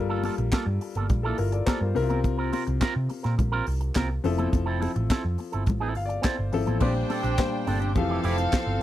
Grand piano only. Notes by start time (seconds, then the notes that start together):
Already playing: G3 F4 A4 A#4
1.23 E4 A4
1.38 F4 A#4
1.52 A4 D5
1.66 G4 C5 A#5
1.82 F4 A#4
1.95 C3 C4 E4 A#4
2.02 F4
4.24 F3 C4 E4 A4
5.97 F5
6.06 D5
6.25 C5
6.53 F3 C4 E4 A4
6.80 A#2 G3 D4 C5
7.38 A#2 G3 D4 C5
7.95 E3 F3 G4 A4